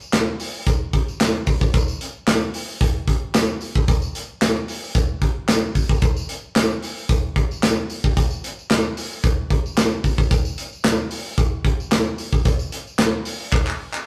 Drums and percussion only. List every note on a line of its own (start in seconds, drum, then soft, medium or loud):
0.01 tambourine soft
0.13 snare loud
0.13 clap medium
0.13 closed hi-hat loud
0.13 tambourine medium
0.40 open hi-hat medium
0.40 tambourine medium
0.54 tambourine soft
0.66 kick loud
0.66 closed hi-hat loud
0.66 tambourine medium
0.93 kick medium
0.93 closed hi-hat medium
1.08 tambourine soft
1.20 snare loud
1.20 clap medium
1.20 closed hi-hat loud
1.20 tambourine loud
1.46 kick medium
1.46 open hi-hat medium
1.46 tambourine medium
1.61 kick loud
1.61 tambourine soft
1.74 kick loud
1.74 closed hi-hat medium
1.74 tambourine medium
1.88 tambourine medium
2.01 closed hi-hat medium
2.01 tambourine soft
2.27 snare loud
2.27 clap loud
2.27 closed hi-hat loud
2.27 tambourine medium
2.54 open hi-hat medium
2.54 tambourine medium
2.69 tambourine soft
2.81 kick loud
2.81 closed hi-hat loud
2.81 tambourine medium
3.08 kick medium
3.08 closed hi-hat medium
3.34 snare loud
3.34 clap medium
3.34 closed hi-hat loud
3.34 tambourine loud
3.61 open hi-hat medium
3.61 tambourine medium
3.75 kick loud
3.75 tambourine soft
3.88 kick loud
3.88 closed hi-hat loud
3.88 tambourine medium
4.02 tambourine medium
4.15 closed hi-hat medium
4.15 tambourine medium
4.42 snare loud
4.42 clap loud
4.42 closed hi-hat loud
4.42 tambourine medium
4.68 open hi-hat medium
4.68 tambourine medium
4.83 tambourine soft
4.95 kick loud
4.95 closed hi-hat loud
4.95 tambourine medium
5.22 kick medium
5.22 closed hi-hat medium
5.48 snare loud
5.48 clap medium
5.48 closed hi-hat loud
5.48 tambourine loud
5.75 kick medium
5.75 open hi-hat medium
5.75 tambourine medium
5.89 kick loud
5.89 tambourine soft
6.02 kick loud
6.02 closed hi-hat medium
6.02 tambourine medium
6.17 tambourine medium
6.29 closed hi-hat medium
6.29 tambourine medium
6.56 snare loud
6.56 clap loud
6.56 closed hi-hat loud
6.56 tambourine medium
6.83 open hi-hat medium
6.83 tambourine soft
6.98 tambourine soft
7.09 kick loud
7.09 closed hi-hat loud
7.09 tambourine medium
7.36 kick medium
7.36 closed hi-hat medium
7.51 tambourine soft
7.63 snare loud
7.63 clap medium
7.63 closed hi-hat loud
7.63 tambourine loud
7.90 open hi-hat medium
7.90 tambourine medium
8.04 kick loud
8.04 tambourine soft
8.17 kick loud
8.17 closed hi-hat medium
8.17 tambourine medium
8.31 tambourine medium
8.44 closed hi-hat medium
8.44 tambourine soft
8.59 tambourine soft
8.70 snare loud
8.70 clap loud
8.70 closed hi-hat loud
8.70 tambourine medium
8.97 open hi-hat medium
8.97 tambourine medium
9.11 tambourine soft
9.24 kick loud
9.24 closed hi-hat loud
9.24 tambourine medium
9.50 kick medium
9.50 closed hi-hat medium
9.66 tambourine soft
9.77 snare loud
9.77 clap medium
9.77 closed hi-hat loud
9.77 tambourine loud
10.04 kick medium
10.04 open hi-hat medium
10.04 tambourine medium
10.18 kick loud
10.18 tambourine soft
10.31 kick loud
10.31 closed hi-hat medium
10.31 tambourine medium
10.45 tambourine medium
10.58 closed hi-hat medium
10.58 tambourine medium
10.73 tambourine soft
10.84 snare loud
10.84 clap medium
10.84 closed hi-hat loud
10.84 tambourine medium
11.11 open hi-hat medium
11.11 tambourine medium
11.25 tambourine soft
11.38 kick loud
11.38 closed hi-hat loud
11.38 tambourine medium
11.65 kick medium
11.65 closed hi-hat medium
11.80 tambourine soft
11.92 snare loud
11.92 clap medium
11.92 closed hi-hat loud
11.92 tambourine loud
12.18 open hi-hat medium
12.18 tambourine medium
12.33 kick loud
12.33 tambourine soft
12.45 kick loud
12.45 closed hi-hat medium
12.45 tambourine medium
12.59 tambourine medium
12.72 closed hi-hat medium
12.72 tambourine medium
12.87 tambourine soft
12.98 snare loud
12.98 clap loud
12.98 closed hi-hat loud
12.98 tambourine medium
13.25 open hi-hat medium
13.25 tambourine soft
13.52 kick loud
13.52 clap medium
13.52 tambourine medium
13.67 clap medium
13.93 clap medium
13.93 tambourine soft